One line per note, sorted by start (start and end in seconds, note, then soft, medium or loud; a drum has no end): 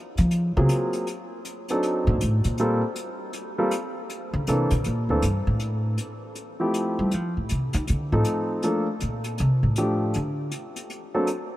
0.17 0.54 F3 loud
0.17 closed hi-hat soft
0.31 closed hi-hat soft
0.57 0.65 C#3 loud
0.57 1.05 F#3 medium
0.57 1.05 A#3 soft
0.57 1.05 C4 soft
0.57 1.06 F4 soft
0.57 1.06 G#4 medium
0.69 closed hi-hat soft
0.93 closed hi-hat soft
1.07 closed hi-hat soft
1.45 closed hi-hat soft
1.68 2.19 F#3 medium
1.68 2.19 C4 soft
1.68 2.19 D4 soft
1.68 2.19 D#4 soft
1.68 2.19 A4 medium
1.68 closed hi-hat soft
1.83 closed hi-hat soft
2.07 2.21 A#2 loud
2.21 2.44 A2 medium
2.21 closed hi-hat medium
2.44 2.80 A#2 medium
2.44 closed hi-hat soft
2.58 2.81 G3 medium
2.58 2.81 A#3 soft
2.58 2.81 C4 medium
2.58 2.81 F4 medium
2.58 2.81 A4 medium
2.58 closed hi-hat soft
2.96 closed hi-hat soft
3.33 closed hi-hat soft
3.58 3.71 G3 medium
3.58 3.71 A#3 medium
3.58 3.71 C4 medium
3.58 3.71 F4 medium
3.58 3.71 A4 medium
3.71 closed hi-hat medium
4.09 closed hi-hat soft
4.33 4.47 D3 medium
4.47 4.71 C3 medium
4.47 4.70 E3 medium
4.47 4.69 A#3 soft
4.47 4.70 C4 soft
4.47 4.70 D4 medium
4.47 4.70 A4 medium
4.47 closed hi-hat soft
4.70 4.85 B2 medium
4.70 closed hi-hat soft
4.84 5.08 A#2 medium
4.84 closed hi-hat soft
5.09 5.23 D2 medium
5.09 5.22 E3 medium
5.09 5.22 A#3 medium
5.09 5.22 C4 medium
5.09 5.22 D4 medium
5.09 5.22 A4 medium
5.22 5.47 G2 medium
5.22 closed hi-hat medium
5.47 5.95 A2 medium
5.59 closed hi-hat soft
5.98 closed hi-hat soft
6.35 closed hi-hat soft
6.60 7.09 F3 medium
6.60 7.09 A3 medium
6.60 7.09 C4 medium
6.60 7.10 E4 medium
6.60 7.10 G4 medium
6.74 closed hi-hat soft
6.99 7.14 G3 medium
7.11 7.36 F3 medium
7.11 closed hi-hat soft
7.37 7.50 A2 medium
7.49 7.74 C3 medium
7.49 closed hi-hat soft
7.73 7.88 D#3 loud
7.73 closed hi-hat soft
7.87 8.12 D3 medium
7.87 closed hi-hat soft
8.12 8.21 A2 medium
8.12 8.61 F3 medium
8.12 8.61 A3 medium
8.12 8.61 C4 medium
8.12 8.61 D#4 soft
8.12 8.61 A4 medium
8.24 closed hi-hat soft
8.62 8.85 F3 medium
8.62 8.85 A3 soft
8.62 8.85 A#3 soft
8.62 8.85 D4 soft
8.62 8.85 A4 medium
8.62 closed hi-hat soft
9.00 9.37 A#2 medium
9.00 closed hi-hat soft
9.24 closed hi-hat soft
9.38 9.62 C3 loud
9.38 closed hi-hat soft
9.63 10.11 A2 medium
9.76 10.15 F3 medium
9.76 10.15 A3 soft
9.76 10.15 D4 soft
9.76 10.15 G4 medium
9.76 closed hi-hat medium
10.14 10.51 D3 medium
10.14 closed hi-hat soft
10.51 closed hi-hat soft
10.76 closed hi-hat soft
10.90 closed hi-hat soft
11.14 11.27 F#3 medium
11.14 11.27 A#3 medium
11.14 11.27 C4 medium
11.14 11.27 D4 medium
11.14 11.27 A4 medium
11.27 closed hi-hat soft